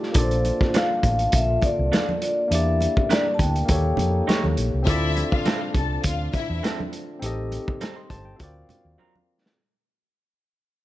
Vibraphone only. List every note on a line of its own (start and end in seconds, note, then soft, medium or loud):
0.19 0.78 C5 medium
0.77 1.36 F5 medium
1.35 1.64 E5 medium
1.63 2.22 D5 medium
2.23 2.53 D5 medium
2.52 3.12 E5 medium
3.12 3.35 D5 loud
3.34 3.40 A5 medium
3.41 4.24 G5 medium